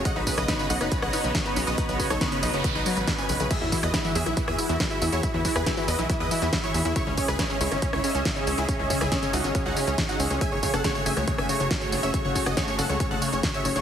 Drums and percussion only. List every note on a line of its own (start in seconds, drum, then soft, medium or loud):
0.05 kick loud
0.05 closed hi-hat medium
0.05 tambourine soft
0.27 kick medium
0.27 open hi-hat loud
0.27 tambourine medium
0.38 cross-stick medium
0.38 closed hi-hat medium
0.38 tambourine soft
0.48 kick loud
0.48 snare loud
0.48 closed hi-hat medium
0.48 tambourine soft
0.59 tambourine soft
0.70 open hi-hat loud
0.70 tambourine medium
0.81 cross-stick medium
0.81 closed hi-hat medium
0.81 tambourine soft
0.92 kick loud
0.92 closed hi-hat medium
0.92 tambourine soft
1.02 cross-stick medium
1.13 open hi-hat loud
1.13 tambourine medium
1.24 closed hi-hat medium
1.24 tambourine soft
1.35 kick loud
1.35 snare loud
1.35 closed hi-hat medium
1.35 tambourine soft
1.46 tambourine soft
1.56 open hi-hat loud
1.56 tambourine medium
1.67 closed hi-hat medium
1.67 tambourine soft
1.78 kick loud
1.78 closed hi-hat medium
1.78 tambourine soft
1.89 closed hi-hat soft
1.89 tambourine soft
2.00 kick medium
2.00 open hi-hat loud
2.00 tambourine medium
2.10 cross-stick medium
2.10 closed hi-hat medium
2.10 tambourine soft
2.21 kick loud
2.21 snare loud
2.21 closed hi-hat medium
2.21 tambourine soft
2.32 closed hi-hat soft
2.32 tambourine soft
2.43 open hi-hat loud
2.43 tambourine medium
2.54 closed hi-hat medium
2.54 tambourine soft
2.64 kick loud
2.64 closed hi-hat medium
2.64 tambourine soft
2.75 tambourine soft
2.86 open hi-hat loud
2.86 tambourine medium
2.97 closed hi-hat medium
2.97 tambourine soft
3.07 kick loud
3.07 cross-stick medium
3.07 snare loud
3.07 closed hi-hat medium
3.07 tambourine soft
3.18 tambourine soft
3.29 open hi-hat loud
3.29 tambourine medium
3.40 closed hi-hat medium
3.40 tambourine soft
3.51 kick loud
3.51 closed hi-hat medium
3.51 crash medium
3.51 tambourine soft
3.72 kick medium
3.72 open hi-hat loud
3.72 tambourine medium
3.83 cross-stick medium
3.83 closed hi-hat medium
3.83 tambourine soft
3.94 kick loud
3.94 snare loud
3.94 closed hi-hat medium
3.94 tambourine soft
4.05 tambourine soft
4.15 open hi-hat loud
4.15 tambourine medium
4.26 cross-stick medium
4.26 closed hi-hat medium
4.26 tambourine soft
4.37 kick loud
4.37 closed hi-hat medium
4.37 tambourine soft
4.48 cross-stick medium
4.59 open hi-hat loud
4.59 tambourine medium
4.69 closed hi-hat medium
4.69 tambourine soft
4.80 kick loud
4.80 snare loud
4.80 closed hi-hat medium
4.80 tambourine soft
4.91 tambourine soft
5.02 open hi-hat loud
5.02 tambourine medium
5.12 closed hi-hat medium
5.12 tambourine soft
5.23 kick loud
5.23 closed hi-hat medium
5.23 tambourine soft
5.45 kick medium
5.45 open hi-hat loud
5.45 tambourine medium
5.56 cross-stick medium
5.56 closed hi-hat medium
5.56 tambourine soft
5.66 kick loud
5.66 snare loud
5.66 closed hi-hat medium
5.66 tambourine soft
5.77 tambourine soft
5.88 open hi-hat loud
5.88 tambourine medium
5.99 closed hi-hat medium
5.99 tambourine soft
6.10 kick loud
6.10 closed hi-hat medium
6.10 tambourine soft
6.31 open hi-hat loud
6.31 tambourine medium
6.42 closed hi-hat medium
6.42 tambourine soft
6.53 kick loud
6.53 snare loud
6.53 closed hi-hat medium
6.53 tambourine soft
6.64 tambourine soft
6.74 open hi-hat loud
6.74 tambourine medium
6.85 closed hi-hat medium
6.85 tambourine soft
6.96 kick loud
6.96 closed hi-hat medium
6.96 tambourine soft
7.17 kick medium
7.17 open hi-hat loud
7.17 tambourine medium
7.28 cross-stick medium
7.28 closed hi-hat medium
7.28 tambourine soft
7.39 kick loud
7.39 snare loud
7.39 closed hi-hat medium
7.39 tambourine soft
7.50 tambourine soft
7.61 open hi-hat loud
7.61 tambourine medium
7.71 cross-stick medium
7.71 closed hi-hat medium
7.71 tambourine soft
7.82 kick loud
7.82 closed hi-hat medium
7.82 tambourine soft
7.93 cross-stick medium
8.04 open hi-hat loud
8.04 tambourine medium
8.15 closed hi-hat medium
8.15 tambourine soft
8.25 kick loud
8.25 snare loud
8.25 closed hi-hat medium
8.25 tambourine soft
8.36 tambourine soft
8.47 open hi-hat loud
8.47 tambourine medium
8.58 closed hi-hat medium
8.58 tambourine soft
8.69 kick loud
8.69 closed hi-hat medium
8.69 tambourine soft
8.90 kick medium
8.90 open hi-hat loud
8.90 tambourine medium
9.01 cross-stick medium
9.01 closed hi-hat medium
9.01 tambourine soft
9.12 kick loud
9.12 snare loud
9.12 closed hi-hat medium
9.12 tambourine soft
9.23 closed hi-hat soft
9.23 tambourine soft
9.33 open hi-hat loud
9.33 tambourine medium
9.44 closed hi-hat medium
9.44 tambourine soft
9.55 kick loud
9.55 closed hi-hat medium
9.55 tambourine soft
9.77 open hi-hat loud
9.77 tambourine medium
9.87 closed hi-hat soft
9.87 tambourine soft
9.98 kick loud
9.98 snare loud
9.98 closed hi-hat medium
9.98 tambourine soft
10.09 closed hi-hat soft
10.09 tambourine soft
10.20 open hi-hat loud
10.20 tambourine medium
10.30 closed hi-hat medium
10.30 tambourine soft
10.41 kick loud
10.41 closed hi-hat medium
10.41 tambourine soft
10.63 kick medium
10.63 open hi-hat loud
10.63 tambourine medium
10.74 cross-stick medium
10.74 closed hi-hat medium
10.74 tambourine soft
10.84 kick loud
10.84 snare loud
10.84 closed hi-hat medium
10.84 tambourine soft
10.95 tambourine soft
11.06 open hi-hat loud
11.06 tambourine medium
11.17 cross-stick medium
11.17 closed hi-hat medium
11.17 tambourine soft
11.28 kick loud
11.28 closed hi-hat medium
11.28 tambourine soft
11.38 cross-stick medium
11.49 open hi-hat loud
11.49 tambourine medium
11.60 closed hi-hat medium
11.60 tambourine soft
11.71 kick loud
11.71 snare loud
11.71 closed hi-hat medium
11.71 tambourine soft
11.82 tambourine soft
11.92 open hi-hat loud
11.92 tambourine medium
12.03 closed hi-hat medium
12.03 tambourine soft
12.14 kick loud
12.14 closed hi-hat medium
12.14 tambourine soft
12.35 kick medium
12.35 open hi-hat loud
12.35 tambourine medium
12.46 cross-stick medium
12.46 closed hi-hat medium
12.46 tambourine soft
12.57 kick loud
12.57 snare loud
12.57 closed hi-hat medium
12.57 tambourine soft
12.68 tambourine soft
12.79 open hi-hat loud
12.79 tambourine medium
12.89 closed hi-hat medium
12.89 tambourine soft
13.00 kick loud
13.00 closed hi-hat medium
13.00 tambourine soft
13.22 open hi-hat loud
13.22 tambourine medium
13.33 closed hi-hat soft
13.33 tambourine soft
13.43 kick loud
13.43 snare loud
13.43 closed hi-hat medium
13.43 tambourine soft
13.54 tambourine soft
13.65 open hi-hat loud
13.65 tambourine medium
13.76 closed hi-hat medium
13.76 tambourine soft